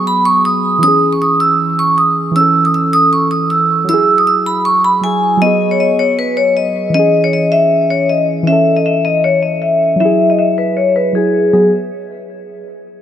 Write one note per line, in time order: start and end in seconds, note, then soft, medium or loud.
0.00 0.78 F#3 medium
0.00 0.80 B3 medium
0.00 0.83 G#4 medium
0.07 0.21 B5 medium
0.25 0.40 C#6 medium
0.45 0.81 D#6 medium
0.79 2.30 E3 medium
0.83 2.33 C#4 medium
0.83 1.11 D#6 loud
0.88 2.35 G#4 medium
1.13 1.19 C#6 medium
1.22 1.36 D#6 medium
1.40 1.76 E6 medium
1.79 1.93 C#6 medium
1.98 2.12 D#6 medium
2.31 3.84 E3 medium
2.36 3.86 C#4 medium
2.36 2.63 E6 loud
2.41 3.88 A4 medium
2.65 2.72 D#6 medium
2.74 2.89 E6 medium
2.93 3.08 D#6 loud
3.13 3.27 C#6 medium
3.31 3.46 D#6 medium
3.50 3.86 E6 medium
3.84 4.99 F#3 medium
3.89 5.01 E4 medium
3.89 4.16 E6 loud
3.94 5.04 G#4 medium
4.18 4.25 D#6 medium
4.27 4.42 E6 medium
4.46 4.61 B5 medium
4.65 4.80 C#6 medium
4.84 4.99 B5 medium
5.01 5.36 F#3 medium
5.01 5.42 E4 soft
5.01 5.40 G#5 medium
5.06 5.43 G#4 medium
5.37 6.89 F#3 medium
5.42 6.92 B3 medium
5.42 5.69 D#5 loud
5.46 6.94 G#4 medium
5.71 5.78 C#5 medium
5.80 5.95 D#5 medium
5.99 6.14 C#5 medium
6.19 6.33 B4 medium
6.37 6.52 C#5 medium
6.57 6.92 D#5 medium
6.90 8.42 E3 medium
6.94 8.44 C#4 medium
6.94 7.22 D#5 loud
6.99 8.47 G#4 medium
7.24 7.31 C#5 medium
7.33 7.48 D#5 medium
7.52 7.88 E5 medium
7.91 8.05 C#5 medium
8.09 8.24 D#5 medium
8.43 9.95 E3 medium
8.47 9.97 C#4 medium
8.47 8.75 E5 loud
8.52 10.00 A4 medium
8.76 8.83 D#5 medium
8.86 9.00 E5 medium
9.05 9.19 D#5 loud
9.24 9.38 C#5 medium
9.42 9.57 D#5 medium
9.62 9.98 E5 medium
9.96 11.11 F#3 medium
10.00 11.13 E4 medium
10.00 10.28 E5 loud
10.05 11.15 G#4 medium
10.30 10.36 D#5 medium
10.39 10.53 E5 medium
10.58 10.72 B4 medium
10.77 10.91 C#5 medium
10.96 11.10 B4 medium
11.13 11.52 F#3 medium
11.13 11.53 E4 soft
11.13 11.51 G#4 medium
11.17 11.52 G#4 medium
11.53 11.71 F#3 medium
11.53 11.71 B3 medium
11.53 11.71 G#4 medium